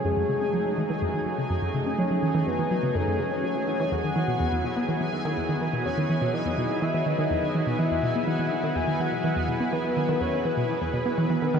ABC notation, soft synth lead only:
X:1
M:4/4
L:1/8
Q:1/4=124
K:E
V:1 name="Soft synth lead"
G6 z2 | c2 B2 A c3 | f6 z2 | c2 d2 e d3 |
e2 f2 g f3 | B2 c B4- B |]